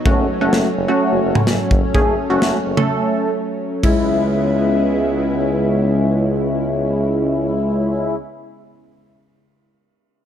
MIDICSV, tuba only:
0, 0, Header, 1, 2, 480
1, 0, Start_track
1, 0, Key_signature, 4, "minor"
1, 0, Tempo, 472441
1, 56, Time_signature, 4, 2, 24, 8
1, 10414, End_track
2, 0, Start_track
2, 0, Title_t, "Tuba"
2, 0, Program_c, 0, 58
2, 56, Note_on_c, 0, 30, 103
2, 146, Note_off_c, 0, 30, 0
2, 175, Note_on_c, 0, 30, 87
2, 266, Note_off_c, 0, 30, 0
2, 414, Note_on_c, 0, 30, 96
2, 505, Note_off_c, 0, 30, 0
2, 534, Note_on_c, 0, 30, 96
2, 625, Note_off_c, 0, 30, 0
2, 774, Note_on_c, 0, 30, 99
2, 865, Note_off_c, 0, 30, 0
2, 1136, Note_on_c, 0, 30, 96
2, 1226, Note_off_c, 0, 30, 0
2, 1257, Note_on_c, 0, 30, 97
2, 1347, Note_off_c, 0, 30, 0
2, 1494, Note_on_c, 0, 30, 97
2, 1585, Note_off_c, 0, 30, 0
2, 1737, Note_on_c, 0, 30, 94
2, 1827, Note_off_c, 0, 30, 0
2, 1977, Note_on_c, 0, 30, 101
2, 2067, Note_off_c, 0, 30, 0
2, 2096, Note_on_c, 0, 30, 88
2, 2186, Note_off_c, 0, 30, 0
2, 2336, Note_on_c, 0, 30, 87
2, 2426, Note_off_c, 0, 30, 0
2, 2455, Note_on_c, 0, 30, 90
2, 2546, Note_off_c, 0, 30, 0
2, 2694, Note_on_c, 0, 30, 84
2, 2785, Note_off_c, 0, 30, 0
2, 3896, Note_on_c, 0, 37, 96
2, 8286, Note_off_c, 0, 37, 0
2, 10414, End_track
0, 0, End_of_file